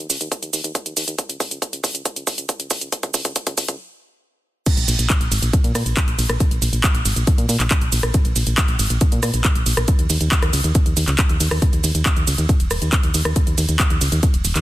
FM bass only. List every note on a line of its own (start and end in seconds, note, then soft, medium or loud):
0.10 0.18 C#2 loud
0.21 0.28 D#2 medium
0.42 0.50 D#2 medium
0.53 0.61 D#2 loud
0.64 0.72 D#2 medium
0.86 0.94 D#2 medium
0.97 1.05 D#2 loud
1.08 1.15 D#2 medium
1.29 1.37 C#2 medium
1.40 1.48 C#2 loud
1.51 1.59 C#2 medium
1.73 1.81 C#2 medium
1.84 1.91 C#2 loud
1.95 2.02 C#2 medium
2.16 2.24 C#2 medium
2.27 2.35 C#2 loud
2.38 2.46 C#2 medium
2.60 2.67 C#2 medium
2.71 2.78 C#2 loud
2.81 2.89 C#2 medium
3.03 3.11 C#2 medium
3.14 3.22 C#2 loud
3.25 3.33 C#2 medium
3.47 3.55 C#2 medium
3.58 3.65 C#2 loud
3.69 3.76 C#2 medium
4.77 4.85 A#1 medium
4.88 4.96 A#1 loud
4.99 5.07 A#1 medium
5.21 5.28 A#1 medium
5.32 5.39 G#1 loud
5.42 5.50 A#1 medium
5.64 5.72 A#2 medium
5.75 5.83 A#2 loud
5.86 5.94 A#1 medium
6.08 6.15 A#1 medium
6.19 6.26 A#1 loud
6.29 6.37 A#1 medium
6.51 6.59 A#1 medium
6.62 6.70 A#1 loud
6.73 6.81 A#1 medium
6.95 7.02 A#1 medium
7.05 7.13 G#1 loud
7.16 7.24 A#1 medium
7.38 7.46 A#2 medium
7.49 7.57 A#2 loud
7.60 7.67 A#1 medium
7.82 7.89 A#1 medium
7.93 8.00 A#1 loud
8.03 8.11 A#1 medium
8.25 8.33 A#1 medium
8.36 8.44 A#1 loud
8.47 8.55 A#1 medium
8.69 8.76 A#1 medium
8.79 8.87 G#1 loud
8.90 8.98 A#1 medium
9.12 9.20 A#2 medium
9.23 9.31 A#2 loud
9.34 9.41 A#1 medium
9.55 9.63 A#1 medium
9.66 9.74 A#1 loud
9.77 9.85 A#1 medium
9.99 10.07 D#2 medium
10.10 10.18 D#2 loud
10.21 10.28 D#2 medium
10.42 10.50 D#2 medium
10.53 10.61 C#2 loud
10.64 10.72 D#2 medium
10.86 10.94 D#2 medium
10.97 11.04 D#2 loud
11.08 11.15 C#2 medium
11.29 11.37 D#2 medium
11.40 11.48 D#2 loud
11.51 11.59 D#2 loud
11.73 11.81 D#2 medium
11.84 11.91 D#2 loud
11.95 12.02 D#2 medium
12.17 12.24 D#2 medium
12.27 12.35 C#2 loud
12.38 12.46 D#2 loud
12.60 12.68 D#1 medium
12.71 12.79 D#1 loud
12.82 12.89 D#2 medium
13.04 13.11 D#2 medium
13.14 13.22 D#2 loud
13.25 13.33 D#2 loud
13.47 13.55 D#2 medium
13.58 13.65 D#2 loud
13.69 13.76 D#2 medium
13.90 13.98 D#2 medium
14.01 14.09 C#2 medium
14.12 14.20 D#2 loud
14.34 14.41 D#1 medium
14.45 14.52 D#1 loud
14.55 14.61 D#2 loud